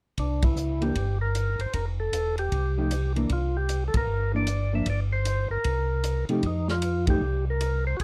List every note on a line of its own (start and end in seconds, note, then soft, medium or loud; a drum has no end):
0.18 0.54 C2 medium
0.18 0.44 D4 medium
0.18 kick soft
0.18 ride soft
0.42 0.83 E4 medium
0.42 kick medium
0.42 ride medium
0.56 0.92 C#2 medium
0.56 hi-hat pedal medium
0.81 0.94 E3 medium
0.81 0.94 A#3 medium
0.81 0.94 D4 medium
0.81 1.18 G4 medium
0.81 ride soft
0.95 1.56 G1 medium
0.95 kick soft
0.95 ride soft
1.21 1.61 A#4 medium
1.35 hi-hat pedal soft
1.35 ride medium
1.59 1.66 G1 soft
1.59 1.73 C5 medium
1.59 ride soft
1.73 2.10 F1 medium
1.73 1.85 A#4 medium
1.73 kick soft
1.73 ride soft
2.00 2.36 A4 medium
2.12 2.49 E1 medium
2.12 hi-hat pedal medium
2.12 ride medium
2.38 3.13 G4 medium
2.38 ride soft
2.52 3.26 C2 medium
2.52 kick soft
2.52 ride soft
2.78 2.90 F3 soft
2.78 2.90 A3 soft
2.78 2.90 D#4 medium
2.78 2.90 G4 medium
2.91 hi-hat pedal medium
2.91 ride medium
3.16 3.28 E3 medium
3.16 3.29 A#3 medium
3.16 3.29 D4 medium
3.16 ride soft
3.29 3.90 C2 medium
3.29 3.57 F4 medium
3.29 kick soft
3.29 ride soft
3.57 3.84 G4 medium
3.69 hi-hat pedal soft
3.69 ride medium
3.88 3.96 A4 medium
3.94 4.07 A#1 medium
3.94 4.32 A#4 medium
3.94 kick medium
3.94 ride medium
4.07 4.82 G1 medium
4.34 4.46 E3 medium
4.34 4.46 A#3 medium
4.34 4.47 D4 medium
4.34 4.75 D5 medium
4.47 hi-hat pedal medium
4.47 ride medium
4.73 4.85 F3 soft
4.73 4.86 A#3 soft
4.73 4.86 D4 medium
4.73 4.88 E5 medium
4.86 5.47 G1 medium
4.86 5.00 D5 medium
4.86 kick soft
4.86 ride medium
5.13 5.48 C5 medium
5.25 hi-hat pedal soft
5.25 ride medium
5.50 5.57 G1 soft
5.50 6.25 A#4 medium
5.64 6.25 C2 medium
5.64 kick soft
5.64 ride medium
6.04 hi-hat pedal soft
6.04 ride medium
6.29 6.42 C3 medium
6.29 6.42 F3 medium
6.29 6.42 A3 medium
6.29 6.42 D#4 medium
6.29 6.42 G4 medium
6.29 ride soft
6.43 7.17 F2 medium
6.43 6.68 D#4 medium
6.43 kick soft
6.43 ride soft
6.68 7.06 F4 medium
6.68 snare soft
6.82 hi-hat pedal soft
6.82 ride medium
7.07 7.20 F3 soft
7.07 7.20 A3 soft
7.07 7.20 D#4 medium
7.07 7.20 G4 medium
7.07 7.45 G4 medium
7.07 kick medium
7.07 ride medium
7.21 7.95 C2 medium
7.50 7.85 A#4 medium
7.61 hi-hat pedal soft
7.61 ride medium
7.87 7.97 C5 medium
7.97 8.04 F#1 medium
7.97 8.00 F#4 medium
7.97 kick soft
7.97 ride soft